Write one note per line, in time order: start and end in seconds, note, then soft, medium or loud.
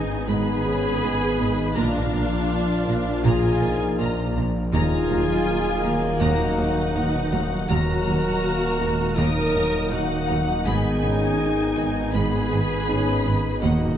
0.00 1.77 G#1 medium
0.00 1.60 D#3 medium
0.00 1.73 D#3 medium
0.00 0.28 B3 medium
0.00 1.60 B3 medium
0.00 1.78 B3 medium
0.00 0.14 D#4 medium
0.00 0.26 D#4 loud
0.00 0.25 G#4 medium
0.00 1.78 G#4 medium
0.00 1.73 D#5 medium
0.00 0.29 G#5 loud
0.28 0.37 G#1 medium
0.28 0.36 G#2 medium
0.28 0.51 G#3 medium
0.28 0.65 D#4 medium
0.28 1.77 G#4 loud
0.28 1.79 B4 loud
0.28 1.77 B5 loud
0.28 0.63 B5 medium
0.64 0.74 G#1 medium
0.64 0.74 G#2 medium
0.64 1.03 C#4 medium
0.64 0.88 G#4 medium
0.64 0.72 B5 medium
1.02 1.10 G#1 medium
1.02 1.11 G#2 medium
1.02 1.40 B3 medium
1.02 1.25 D#4 medium
1.02 1.10 B5 medium
1.39 1.48 G#1 medium
1.39 1.47 G#2 medium
1.39 1.62 B3 medium
1.39 1.76 D#4 medium
1.39 1.47 B5 medium
1.75 4.74 A#1 medium
1.75 1.85 A#1 medium
1.75 1.85 A#2 medium
1.75 4.73 F3 medium
1.75 4.69 F3 medium
1.75 4.73 A#3 medium
1.75 1.99 A#3 medium
1.75 4.70 A#3 medium
1.75 3.21 D4 loud
1.75 2.14 D4 medium
1.75 3.27 F4 loud
1.75 4.72 A#4 medium
1.75 4.73 D5 medium
1.75 3.25 F5 loud
1.75 2.11 A#5 medium
2.13 2.21 A#1 medium
2.13 2.22 A#2 medium
2.13 2.51 A#3 medium
2.13 2.37 D4 medium
2.13 2.22 A#5 medium
2.50 2.86 D4 medium
2.87 2.95 A#1 medium
2.87 2.96 A#2 medium
2.87 3.24 D4 medium
2.87 3.11 F4 medium
2.87 2.96 A#5 medium
3.22 3.33 A#1 medium
3.22 3.33 A#2 medium
3.22 3.47 A#3 loud
3.22 3.60 F4 medium
3.22 3.97 F4 loud
3.22 4.01 G#4 loud
3.22 3.97 G#5 medium
3.22 3.59 A#5 medium
3.61 3.69 A#1 medium
3.61 3.70 A#2 medium
3.61 3.99 D#4 medium
3.61 3.84 A#4 medium
3.61 3.70 A#5 medium
3.98 4.07 A#1 medium
3.98 4.07 A#2 medium
3.98 4.56 D4 medium
3.98 4.35 F4 medium
3.98 4.21 F4 medium
3.98 4.36 A#4 medium
3.98 4.36 A#5 medium
3.98 4.08 A#5 medium
4.36 4.44 A#1 medium
4.36 4.44 A#2 medium
4.36 4.59 D4 medium
4.36 4.45 A#5 medium
4.72 7.68 D#1 medium
4.72 4.81 D#2 loud
4.72 7.65 D#3 loud
4.72 7.68 D#3 medium
4.72 4.96 D#3 loud
4.72 7.65 F#3 medium
4.72 5.46 D#4 medium
4.72 6.17 F4 loud
4.72 6.23 G#4 loud
4.72 7.66 A#4 medium
4.72 7.68 D#5 medium
4.72 6.17 G#5 loud
4.72 5.08 A#5 loud
5.10 5.18 D#2 medium
5.10 5.19 D#2 medium
5.10 5.33 F#3 medium
5.10 5.19 A#5 medium
5.48 6.96 A#3 loud
5.83 5.91 D#2 medium
5.83 5.93 D#2 medium
5.83 6.07 A#3 medium
5.83 5.91 A#5 medium
6.20 6.28 D#2 loud
6.20 6.30 D#2 loud
6.20 6.44 D#3 medium
6.20 7.66 D#4 loud
6.20 7.69 F#4 loud
6.20 7.70 F#5 loud
6.20 6.56 A#5 medium
6.58 6.66 D#2 medium
6.58 6.81 D#4 medium
6.58 6.66 A#5 medium
6.95 7.03 D#2 medium
6.95 7.33 B2 medium
6.95 7.18 A#3 medium
6.95 7.03 A#5 medium
7.32 7.41 D#2 medium
7.32 7.55 F#3 medium
7.32 7.70 A#3 medium
7.32 7.40 A#5 medium
7.69 10.68 D#1 medium
7.69 7.78 D#2 medium
7.69 13.58 D#3 medium
7.69 13.58 D#3 loud
7.69 7.92 D#3 loud
7.69 8.42 F#3 medium
7.69 10.62 A#3 medium
7.69 10.49 A#3 medium
7.69 9.15 F#4 loud
7.69 10.62 A#4 medium
7.69 9.19 A#4 loud
7.69 13.58 D#5 medium
7.69 8.04 A#5 loud
7.69 9.18 A#5 loud
8.06 8.15 D#2 medium
8.06 8.29 F#3 medium
8.06 8.14 A#5 medium
8.42 8.80 A#3 medium
8.80 8.88 D#2 medium
8.80 8.89 D#2 medium
8.80 9.18 G#3 medium
8.80 9.03 A#3 medium
8.80 8.88 A#5 medium
9.17 9.26 D#2 loud
9.17 9.26 D#2 medium
9.17 9.40 D#3 loud
9.17 9.93 F#3 medium
9.17 9.94 D#4 loud
9.17 9.92 A#4 loud
9.17 9.52 A#5 medium
9.17 9.90 D#6 loud
9.54 9.63 D#2 medium
9.54 9.78 D#4 medium
9.54 9.62 A#5 medium
9.92 10.00 D#2 medium
9.92 10.14 A#3 medium
9.92 10.67 A#3 medium
9.92 10.64 D#4 loud
9.92 10.66 F#4 loud
9.92 10.65 F#5 loud
9.92 10.00 A#5 medium
10.27 10.37 D#2 medium
10.27 10.38 D#2 medium
10.27 10.51 F#3 medium
10.27 10.35 A#5 medium
10.65 13.64 G#1 medium
10.65 10.74 G#1 medium
10.65 10.74 G#2 medium
10.65 10.88 G#3 loud
10.65 13.58 B3 medium
10.65 13.63 B3 medium
10.65 11.03 B3 medium
10.65 12.11 D#4 loud
10.65 13.63 G#4 medium
10.65 11.84 G#4 loud
10.65 12.14 G#5 loud
10.65 11.00 B5 medium
11.03 11.12 G#1 medium
11.03 11.12 G#2 medium
11.03 11.26 B3 medium
11.03 11.39 C#4 medium
11.03 11.11 B5 medium
11.40 12.14 D#4 medium
11.77 11.85 G#1 medium
11.77 11.86 G#2 medium
11.77 11.99 D#4 medium
11.77 11.85 B5 medium
12.13 12.23 G#1 medium
12.13 12.23 G#2 medium
12.13 12.36 G#3 medium
12.13 12.88 B3 medium
12.13 13.62 G#4 loud
12.13 13.59 B4 loud
12.13 12.49 B5 medium
12.13 13.62 B5 loud
12.51 12.60 G#1 medium
12.51 12.59 G#2 medium
12.51 12.74 G#4 medium
12.51 12.60 B5 medium
12.88 12.97 G#1 medium
12.88 12.98 G#2 medium
12.88 13.25 C#4 medium
12.88 13.11 D#4 medium
12.88 12.96 B5 medium
13.26 13.34 G#1 medium
13.26 13.34 G#2 medium
13.26 13.48 B3 medium
13.26 13.63 D#4 medium
13.26 13.34 B5 medium
13.62 13.97 D#1 medium
13.62 13.70 D#2 medium
13.62 13.71 D#2 medium
13.62 13.97 D#3 medium
13.62 13.85 D#3 loud
13.62 13.97 A#3 medium
13.62 13.97 A#3 loud
13.62 13.97 A#3 medium
13.62 13.97 D#4 medium
13.62 13.97 F#4 medium
13.62 13.97 D#5 medium
13.62 13.97 F#5 medium